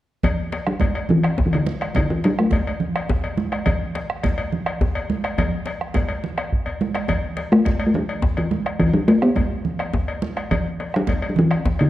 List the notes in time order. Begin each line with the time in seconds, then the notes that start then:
0.23 bombo low, cowbell, djembe slap, djembe tone, low conga, djembe bass
0.52 cowbell, djembe slap
0.66 F#3, bombo rim
0.79 bombo low, cowbell, high conga, djembe tone, djembe bass
0.95 cowbell
1.09 E3, low conga
1.23 bombo rim, cowbell
1.38 bombo low, djembe slap, djembe tone, djembe bass
1.46 E3
1.53 D3, cowbell
1.66 djembe slap, high conga
1.81 bombo rim, cowbell
1.94 D3, bombo low, cowbell, djembe slap, djembe tone, low conga, djembe bass
2.10 E3
2.24 F#3, cowbell, djembe slap
2.38 A3, bombo rim
2.51 bombo low, cowbell, high conga, djembe tone, djembe bass
2.67 cowbell
2.80 low conga
2.95 bombo rim, cowbell
3.09 bombo low, djembe slap, djembe tone, djembe bass
3.23 cowbell
3.37 djembe slap, high conga
3.52 bombo rim, cowbell
3.66 bombo low, cowbell, djembe slap, djembe tone, low conga, djembe bass
3.95 cowbell, djembe slap
4.10 bombo rim
4.23 bombo low, cowbell, djembe tone, high conga, djembe bass
4.38 cowbell
4.53 low conga
4.66 bombo rim, cowbell
4.81 bombo low, djembe slap, djembe tone, djembe bass
4.95 cowbell
5.10 djembe slap, high conga
5.24 bombo rim, cowbell
5.38 bombo rim, bombo low, cowbell, djembe tone, high conga, djembe bass, low conga
5.66 cowbell, djembe slap
5.81 bombo rim
5.94 bombo rim, bombo low, cowbell, high conga, djembe tone, djembe bass
6.09 cowbell, djembe slap, high conga
6.24 low conga
6.38 bombo rim, cowbell, djembe bass
6.52 bombo low, djembe bass
6.66 cowbell, djembe bass
6.81 bombo rim, djembe slap, high conga
6.94 bombo rim, cowbell, djembe slap
7.08 bombo low, cowbell, djembe slap, djembe tone, djembe bass, low conga
7.37 cowbell, djembe slap
7.52 A3, bombo rim
7.65 bombo low, cowbell, djembe tone, high conga, djembe bass
7.79 cowbell
7.87 A3
7.94 F#3, low conga
8.09 cowbell
8.22 bombo low, djembe slap, djembe tone, djembe bass
8.37 E3, cowbell
8.51 djembe slap, high conga
8.66 bombo rim, cowbell
8.79 E3, bombo low, cowbell, djembe slap, djembe tone, low conga, djembe bass
8.94 F#3
9.08 A3, cowbell, djembe slap
9.22 B3, bombo rim
9.36 bombo low, cowbell, high conga, djembe tone, djembe bass
9.65 low conga
9.79 bombo rim, cowbell
9.94 bombo low, djembe slap, djembe tone, djembe bass
10.08 cowbell
10.22 djembe slap, high conga
10.37 bombo rim, cowbell
10.51 bombo low, cowbell, djembe slap, djembe tone, djembe bass, low conga
10.80 cowbell, djembe slap
10.94 F#3, bombo rim
11.07 bombo low, cowbell, high conga, djembe tone, djembe bass
11.22 cowbell
11.29 F#3
11.36 E3, low conga
11.51 bombo rim, cowbell
11.65 bombo low, djembe slap, djembe tone, djembe bass
11.79 D3, cowbell